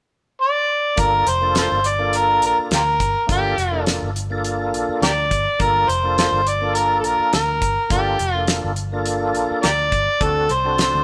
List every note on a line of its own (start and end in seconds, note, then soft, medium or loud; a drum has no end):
0.42 1.01 D5 medium
0.96 1.25 G1 medium
0.96 1.26 A#3 medium
0.96 1.26 D4 medium
0.96 1.26 F4 medium
0.96 1.26 A4 medium
0.96 1.30 A#4 loud
0.96 kick loud
0.96 closed hi-hat medium
1.27 1.68 F1 medium
1.27 1.57 C5 medium
1.27 closed hi-hat medium
1.41 1.79 A#3 medium
1.41 1.80 D4 medium
1.41 1.80 F4 medium
1.41 1.80 A4 medium
1.55 1.66 F4 medium
1.55 1.64 A4 medium
1.55 1.89 C5 loud
1.55 snare loud
1.55 closed hi-hat medium
1.72 2.43 G1 medium
1.84 2.18 D5 medium
1.84 closed hi-hat medium
1.99 2.75 A#3 medium
1.99 2.75 D4 medium
1.99 2.75 F4 medium
1.99 2.75 A4 medium
2.13 2.44 A#4 medium
2.13 closed hi-hat medium
2.42 2.57 A#1 medium
2.42 2.58 A#4 medium
2.42 closed hi-hat medium
2.59 muted fingered electric bass stroke soft
2.71 2.98 D2 medium
2.71 2.82 F4 medium
2.71 2.81 G4 medium
2.71 3.26 A#4 medium
2.71 snare medium
2.71 closed hi-hat medium
3.00 3.15 G1 medium
3.00 kick medium
3.00 closed hi-hat medium
3.26 3.56 G1 medium
3.26 3.56 A#3 medium
3.26 3.57 D4 medium
3.26 3.57 F4 medium
3.26 3.57 A4 medium
3.26 kick loud
3.26 closed hi-hat medium
3.31 3.84 G4 medium
3.58 3.99 F1 medium
3.58 closed hi-hat medium
3.72 4.10 A#3 medium
3.72 4.10 D4 medium
3.72 4.10 F4 medium
3.72 4.11 A4 medium
3.86 snare loud
3.86 closed hi-hat medium
4.03 4.74 G1 medium
4.16 closed hi-hat medium
4.30 5.06 A#3 medium
4.30 5.06 D4 medium
4.30 5.06 F4 medium
4.30 5.07 A4 loud
4.44 closed hi-hat medium
4.74 4.88 A#1 medium
4.74 closed hi-hat medium
4.89 muted fingered electric bass stroke soft
5.02 5.29 D2 medium
5.02 5.12 G4 medium
5.02 5.12 A#4 medium
5.02 5.63 D5 loud
5.02 snare medium
5.02 closed hi-hat medium
5.31 5.46 G1 medium
5.31 kick medium
5.31 closed hi-hat medium
5.59 5.87 G1 medium
5.59 5.88 A#3 medium
5.59 5.88 D4 medium
5.59 5.89 F4 medium
5.59 5.89 A4 medium
5.59 5.91 A#4 loud
5.59 kick loud
5.59 closed hi-hat medium
5.88 6.30 F1 medium
5.88 6.18 C5 medium
5.88 closed hi-hat medium
6.03 6.41 A#3 medium
6.03 6.41 D4 medium
6.03 6.42 F4 medium
6.03 6.42 A4 medium
6.18 6.25 F4 medium
6.18 6.26 A4 medium
6.18 6.49 C5 loud
6.18 snare loud
6.18 closed hi-hat medium
6.32 7.04 G1 medium
6.47 6.76 D5 medium
6.47 closed hi-hat medium
6.61 7.37 A#3 medium
6.61 7.37 D4 medium
6.61 7.37 F4 medium
6.61 7.37 A4 medium
6.75 6.97 A#4 medium
6.75 closed hi-hat medium
7.00 7.07 A4 medium
7.04 7.19 A#1 medium
7.04 7.33 A#4 medium
7.04 closed hi-hat medium
7.20 muted fingered electric bass stroke soft
7.33 7.60 D2 medium
7.33 7.87 A#4 medium
7.33 snare loud
7.33 closed hi-hat medium
7.62 7.76 G1 medium
7.62 kick medium
7.62 closed hi-hat medium
7.89 8.17 G1 medium
7.89 8.18 A#3 medium
7.89 8.19 D4 medium
7.89 8.19 F4 medium
7.89 8.33 G4 medium
7.89 8.20 A4 medium
7.89 kick loud
7.89 closed hi-hat medium
8.19 8.61 F1 medium
8.19 closed hi-hat medium
8.33 8.72 A#3 medium
8.33 8.72 D4 medium
8.33 8.45 F4 medium
8.33 8.73 F4 medium
8.33 8.73 A4 medium
8.47 snare loud
8.47 closed hi-hat medium
8.64 9.35 G1 medium
8.76 closed hi-hat medium
8.92 9.67 A#3 medium
8.92 9.68 D4 medium
8.92 9.68 F4 medium
8.92 9.68 A4 loud
9.06 closed hi-hat medium
9.35 9.49 A#1 medium
9.35 closed hi-hat medium
9.51 muted fingered electric bass stroke soft
9.63 9.91 D2 medium
9.63 9.71 G4 medium
9.63 9.70 A#4 medium
9.63 10.24 D5 loud
9.63 snare medium
9.63 closed hi-hat medium
9.92 10.07 G1 medium
9.92 kick medium
9.92 closed hi-hat medium
10.20 10.48 D2 medium
10.20 10.49 C4 medium
10.20 10.49 D4 medium
10.20 10.50 F#4 medium
10.20 10.50 A4 medium
10.20 10.53 A4 loud
10.20 kick loud
10.20 closed hi-hat medium
10.49 10.91 C2 medium
10.49 10.80 C5 medium
10.49 closed hi-hat soft
10.64 11.02 C4 medium
10.64 11.02 D4 medium
10.64 11.03 F#4 medium
10.64 11.03 A4 medium
10.78 11.04 C5 medium
10.78 snare loud
10.78 closed hi-hat medium
10.94 11.04 D2 medium